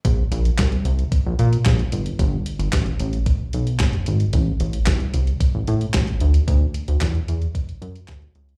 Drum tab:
HH |x-xxxxxxx-xxxxxx|x-xxxxxxx-xxxxxx|x-xxxxxxx-xxxxxx|x-xxxxxxxxxxxxxx|
CP |----x-------x---|----x-------x---|----x-------x---|----x-------x---|
SD |----o-------o---|----o-------o---|----o-------o---|----o-------o---|
BD |o---o---o---o---|o---o---o---o---|o---o---o---o---|o---o---o---o---|